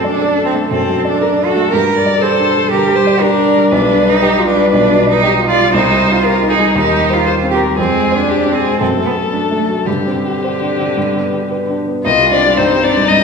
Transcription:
0.00 0.68 F#2 soft
0.00 0.14 A3 soft
0.00 0.69 A4 soft
0.04 0.45 D4 medium
0.04 0.31 D5 soft
0.21 0.48 A4 soft
0.37 0.64 D4 soft
0.45 0.53 C4 medium
0.54 0.81 A3 soft
0.71 1.69 F#2 soft
0.71 1.07 C4 medium
0.71 1.20 A4 medium
0.88 1.15 F#3 soft
1.05 1.47 D4 medium
1.05 1.31 D5 soft
1.21 1.48 A4 soft
1.21 1.29 A#4 soft
1.38 1.65 D4 soft
1.46 1.71 F#4 medium
1.46 1.74 A4 soft
1.56 1.72 A3 soft
1.71 2.69 G2 soft
1.71 1.96 G4 soft
1.71 2.20 A#4 medium
1.89 2.15 G3 soft
1.96 2.23 D5 medium
2.06 2.32 D5 soft
2.21 2.49 G4 soft
2.21 2.70 A4 medium
2.21 2.71 C5 medium
2.39 2.65 D4 soft
2.56 2.82 G3 soft
2.71 2.99 D3 soft
2.71 3.22 G4 medium
2.71 2.97 A#4 medium
2.89 3.15 G3 soft
2.96 3.22 C5 medium
3.07 3.32 D5 soft
3.21 3.70 D4 medium
3.21 3.48 G4 soft
3.21 3.73 A#4 medium
3.39 3.65 D4 soft
3.56 3.72 G3 soft
3.71 4.70 B1 medium
3.71 4.11 D4 medium
3.71 4.23 B4 medium
3.89 4.16 G3 soft
4.06 4.47 D#4 medium
4.06 4.32 D5 soft
4.22 4.47 G4 medium
4.22 4.49 G4 soft
4.39 4.66 F4 soft
4.47 4.71 D4 medium
4.47 5.22 B4 medium
4.56 4.83 G3 soft
4.72 5.71 B1 soft
4.72 5.10 D4 medium
4.90 5.17 B2 soft
5.07 5.47 D#4 medium
5.07 5.34 D5 soft
5.23 5.50 G4 soft
5.23 5.32 G4 medium
5.40 5.67 F4 soft
5.48 5.73 F4 medium
5.48 5.74 D5 medium
5.57 5.74 G3 soft
5.73 6.72 C2 medium
5.73 6.14 D#4 medium
5.73 6.26 C5 medium
5.90 6.17 G3 soft
6.09 6.49 F4 medium
6.09 6.35 C5 soft
6.25 6.51 G4 soft
6.25 6.52 A#4 medium
6.42 6.68 D#4 soft
6.50 6.74 D#4 medium
6.50 6.77 G#4 soft
6.59 6.75 G3 soft
6.75 7.75 D#2 medium
6.75 7.15 D#4 medium
6.75 7.26 G4 medium
6.93 7.20 G3 soft
7.10 7.50 F4 medium
7.10 7.37 C5 soft
7.26 7.54 G4 soft
7.26 7.34 C5 medium
7.43 7.71 C4 soft
7.51 7.59 G4 medium
7.51 7.77 A#4 medium
7.62 7.78 G3 soft
7.77 8.78 F2 soft
7.77 8.16 C4 medium
7.77 8.31 G#4 medium
7.95 8.22 G#3 soft
8.12 8.54 D4 medium
8.12 8.39 C5 soft
8.29 8.56 G4 soft
8.29 8.56 G#4 soft
8.46 8.73 C4 soft
8.52 8.79 C4 medium
8.52 8.80 G#4 soft
8.63 8.80 G#3 soft
8.80 9.83 F#2 soft
8.80 8.88 C4 medium
8.80 9.88 A4 medium
8.97 9.25 A3 soft
9.06 9.14 B3 medium
9.15 9.43 A4 soft
9.32 9.40 A3 soft
9.32 9.61 D4 soft
9.51 9.79 A3 soft
9.57 9.65 A3 medium
9.69 9.87 F#3 soft
9.86 10.93 G2 soft
9.86 9.94 D3 soft
9.86 11.77 G4 soft
9.93 10.02 C3 soft
10.01 11.77 D3 medium
10.06 10.35 C4 soft
10.25 10.54 G4 soft
10.44 10.72 C5 soft
10.61 10.90 D4 soft
10.80 10.97 C4 soft
10.97 12.02 G2 soft
11.15 11.43 B3 soft
11.33 11.62 G4 soft
11.51 11.80 B4 soft
11.70 11.98 D4 soft
11.88 12.05 B3 soft
12.04 13.06 C2 soft
12.04 12.12 D#4 medium
12.04 12.59 F4 medium
12.04 12.30 D#5 medium
12.19 12.39 G4 soft
12.31 12.52 C4 soft
12.31 12.59 D4 medium
12.31 12.58 D5 medium
12.45 12.65 G3 soft
12.57 12.78 G2 soft
12.57 12.83 C4 medium
12.57 13.24 D#4 medium
12.57 12.85 C5 medium
12.72 12.91 G4 soft
12.84 13.04 C4 soft
12.84 13.08 D4 medium
12.84 13.10 D5 medium
12.97 13.16 G3 soft
13.08 13.24 G2 soft
13.08 13.17 D#4 medium
13.08 13.24 D#5 medium

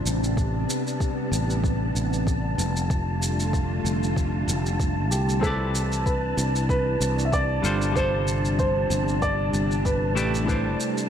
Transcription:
0.00 2.54 C3 medium
0.00 2.55 D4 medium
0.00 11.09 A5 medium
0.05 0.64 A1 medium
0.05 2.56 G3 medium
0.05 2.56 B3 medium
0.05 shaker medium
0.24 shaker soft
0.37 kick loud
0.37 shaker soft
0.70 shaker medium
0.87 shaker soft
1.00 kick loud
1.00 shaker soft
1.32 1.90 A1 medium
1.32 shaker medium
1.50 shaker soft
1.64 kick medium
1.64 shaker soft
1.95 2.54 A1 medium
1.95 shaker medium
2.13 shaker soft
2.27 kick medium
2.27 shaker soft
2.58 3.80 F1 medium
2.58 5.40 D3 medium
2.58 5.40 G3 medium
2.58 5.40 A3 medium
2.58 5.40 F4 medium
2.58 shaker medium
2.76 shaker soft
2.90 kick loud
2.90 shaker soft
3.22 shaker medium
3.40 shaker soft
3.53 kick loud
3.53 shaker soft
3.85 4.43 F1 medium
3.85 shaker medium
4.03 shaker soft
4.16 kick medium
4.16 shaker soft
4.48 5.11 F1 medium
4.48 shaker medium
4.66 shaker soft
4.80 kick loud
4.80 shaker soft
5.11 6.33 C2 medium
5.11 5.44 G4 medium
5.11 shaker medium
5.29 shaker soft
5.40 7.59 C3 medium
5.40 11.09 C3 medium
5.40 7.61 E3 medium
5.40 7.60 C4 medium
5.40 11.09 D4 medium
5.40 7.61 E4 medium
5.40 6.08 A4 medium
5.40 7.61 B4 medium
5.40 kick medium
5.40 shaker soft
5.45 7.61 B4 medium
5.45 7.62 D5 medium
5.75 shaker medium
5.92 shaker soft
6.06 6.65 B4 medium
6.06 kick medium
6.06 shaker soft
6.37 6.96 C2 medium
6.37 shaker medium
6.56 shaker soft
6.69 7.22 B4 loud
6.69 kick medium
6.69 shaker soft
7.00 7.59 C2 medium
7.00 shaker medium
7.19 shaker soft
7.25 7.32 E5 medium
7.32 7.98 D5 medium
7.32 kick medium
7.32 shaker soft
7.62 8.85 G1 medium
7.62 10.14 F3 medium
7.62 7.91 G3 medium
7.62 11.09 G3 medium
7.62 7.92 D4 medium
7.62 7.92 F4 medium
7.62 7.92 A4 medium
7.62 7.93 C5 medium
7.62 shaker medium
7.82 shaker soft
7.92 10.11 G3 medium
7.92 10.12 D4 medium
7.92 10.13 F4 medium
7.92 8.58 C5 loud
7.92 kick medium
7.96 10.14 A4 medium
7.96 10.15 C5 medium
7.96 shaker soft
8.28 shaker medium
8.45 shaker soft
8.59 9.24 C5 medium
8.59 kick medium
8.59 shaker soft
8.90 9.49 G1 medium
8.90 shaker medium
9.08 shaker soft
9.22 9.87 D5 loud
9.22 kick medium
9.22 shaker soft
9.53 10.16 G1 medium
9.53 shaker medium
9.71 shaker soft
9.85 10.31 B4 medium
9.85 kick medium
9.85 shaker soft
10.15 10.75 A1 medium
10.15 10.43 A3 medium
10.15 10.44 E4 medium
10.15 10.45 G4 medium
10.15 10.45 B4 medium
10.15 10.46 D5 medium
10.15 shaker medium
10.35 shaker soft
10.44 11.09 A3 medium
10.44 11.09 E4 medium
10.48 11.09 B4 medium
10.48 11.09 C5 medium
10.48 11.09 D5 medium
10.48 kick medium
10.48 shaker soft
10.80 shaker medium
10.98 shaker soft

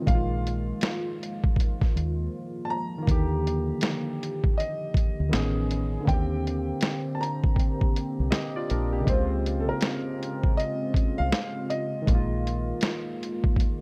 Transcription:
0.00 2.97 D#3 medium
0.00 3.04 G#3 medium
0.00 3.03 F4 medium
0.00 0.12 D#5 loud
0.06 0.71 A#1 loud
0.06 6.03 F3 medium
0.06 3.03 G#3 medium
0.06 5.28 A#3 medium
0.06 2.28 F5 medium
0.06 kick loud
0.06 closed hi-hat medium
0.11 3.01 A#3 medium
0.15 3.07 F4 medium
0.47 closed hi-hat medium
0.81 snare loud
0.81 closed hi-hat medium
1.23 closed hi-hat medium
1.44 kick loud
1.56 kick medium
1.56 closed hi-hat medium
1.81 kick loud
1.81 snare soft
1.96 2.27 D#2 medium
1.96 closed hi-hat medium
2.65 2.70 A5 medium
2.70 4.54 A#5 loud
2.98 5.24 D#3 medium
3.03 5.26 A#3 medium
3.07 3.71 D#2 loud
3.07 5.28 D3 medium
3.07 5.30 G4 medium
3.07 kick loud
3.07 closed hi-hat medium
3.11 5.30 G4 medium
3.47 closed hi-hat medium
3.81 snare loud
3.81 closed hi-hat medium
4.23 closed hi-hat medium
4.44 kick medium
4.58 6.12 D#5 medium
4.58 closed hi-hat medium
4.94 kick loud
4.94 closed hi-hat medium
5.20 5.31 D2 medium
5.29 6.06 D#3 medium
5.29 6.07 B3 medium
5.29 snare loud
5.33 5.97 A1 loud
5.33 6.07 B3 medium
5.33 6.07 C#4 medium
5.33 6.08 C#4 medium
5.33 6.07 G#4 medium
5.33 6.09 G#4 medium
5.33 closed hi-hat medium
5.71 closed hi-hat medium
6.01 9.00 D3 medium
6.05 6.71 D#2 loud
6.05 9.05 D3 medium
6.05 8.27 A#3 medium
6.05 9.05 A#3 medium
6.05 9.05 C4 medium
6.05 9.05 G4 medium
6.05 7.18 G5 medium
6.05 kick loud
6.05 closed hi-hat medium
6.09 8.29 C4 medium
6.14 8.30 G4 medium
6.47 closed hi-hat medium
6.81 snare loud
6.81 closed hi-hat medium
7.15 7.20 A5 medium
7.21 8.66 A#5 medium
7.21 closed hi-hat medium
7.44 kick medium
7.56 kick medium
7.56 closed hi-hat medium
7.81 kick loud
7.96 closed hi-hat medium
8.20 8.31 C2 medium
8.31 8.54 G4 medium
8.31 8.54 D#5 medium
8.31 snare loud
8.31 closed hi-hat medium
8.56 8.70 F4 medium
8.56 8.69 D5 medium
8.70 9.02 A#1 loud
8.70 8.93 D4 medium
8.70 8.93 A#4 medium
8.70 closed hi-hat medium
8.93 9.29 A#3 medium
8.93 9.29 G4 medium
9.01 12.00 C#3 medium
9.05 9.71 C#2 loud
9.05 12.04 C#3 medium
9.05 12.02 G#3 medium
9.05 12.04 G#3 medium
9.05 12.04 C4 medium
9.05 13.81 F4 medium
9.05 9.62 C5 medium
9.05 kick loud
9.05 closed hi-hat medium
9.09 12.04 C4 medium
9.13 12.06 F4 medium
9.46 closed hi-hat medium
9.60 9.69 A4 medium
9.69 10.60 A#4 medium
9.81 snare loud
9.81 closed hi-hat medium
10.23 closed hi-hat medium
10.43 kick medium
10.57 11.20 D#5 loud
10.57 closed hi-hat medium
10.94 kick loud
10.94 closed hi-hat medium
11.18 11.31 C2 medium
11.18 11.71 F5 loud
11.32 snare loud
11.32 closed hi-hat medium
11.70 13.81 D#5 medium
11.70 closed hi-hat medium
12.02 13.81 D#3 medium
12.06 12.71 A#1 loud
12.06 13.81 D#3 medium
12.06 13.81 G#3 medium
12.06 13.81 A#3 medium
12.06 kick loud
12.06 closed hi-hat medium
12.10 13.81 A#3 medium
12.15 13.81 F4 medium
12.47 closed hi-hat medium
12.81 snare loud
12.81 closed hi-hat medium
13.23 closed hi-hat medium
13.44 kick medium
13.56 kick medium
13.56 closed hi-hat medium

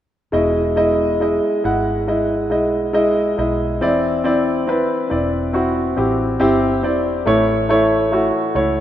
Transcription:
0.32 1.39 E1 medium
0.32 1.61 B2 soft
0.32 0.74 G#3 medium
0.32 0.75 E4 medium
0.32 0.75 D#5 medium
0.76 1.18 G#3 medium
0.76 1.19 E4 medium
0.76 1.19 D#5 medium
1.20 1.62 G#3 medium
1.20 1.63 E4 soft
1.20 1.63 D#5 medium
1.64 2.51 G#1 medium
1.64 2.06 G#3 medium
1.64 2.06 E4 medium
1.64 2.06 F#5 medium
2.07 2.48 G#3 medium
2.07 2.49 E4 medium
2.07 2.50 D#5 medium
2.50 3.34 B1 medium
2.50 2.92 G#3 medium
2.50 2.92 E4 soft
2.50 2.93 D#5 medium
2.93 3.35 G#3 medium
2.93 3.36 E4 medium
2.93 3.36 D#5 medium
3.38 3.82 B1 medium
3.38 3.79 G#3 medium
3.38 3.80 E4 medium
3.38 3.80 D#5 medium
3.81 4.86 E1 medium
3.81 5.08 E3 soft
3.81 4.23 C4 medium
3.81 4.23 E4 medium
3.81 4.23 D5 medium
4.24 4.66 C4 medium
4.24 4.66 E4 medium
4.24 4.66 D5 medium
4.67 5.08 C4 medium
4.67 5.09 E4 medium
4.67 5.10 B4 medium
5.09 5.94 E1 medium
5.09 5.52 C4 medium
5.09 5.52 E4 medium
5.09 5.52 D5 medium
5.53 5.95 C4 medium
5.53 5.95 E4 medium
5.53 5.96 F#4 medium
5.96 6.38 A1 medium
5.96 6.38 C4 medium
5.96 6.38 E4 medium
5.96 6.39 G4 medium
6.40 6.84 G1 medium
6.40 6.81 C4 medium
6.40 6.81 E4 medium
6.40 6.82 G4 medium
6.83 7.24 E1 medium
6.83 7.24 C4 medium
6.83 7.25 E4 medium
6.83 7.25 D5 medium
7.26 8.30 A1 medium
7.26 8.51 A2 medium
7.26 8.51 E3 soft
7.26 7.67 A3 medium
7.26 7.67 E4 medium
7.26 7.68 C#5 medium
7.69 8.10 A3 medium
7.69 8.10 E4 medium
7.69 8.11 C#5 medium
8.12 8.53 A3 medium
8.12 8.53 E4 medium
8.12 8.53 F#4 medium
8.54 8.80 C#2 medium
8.54 8.80 A3 medium
8.54 8.80 E4 medium
8.54 8.80 C#5 medium

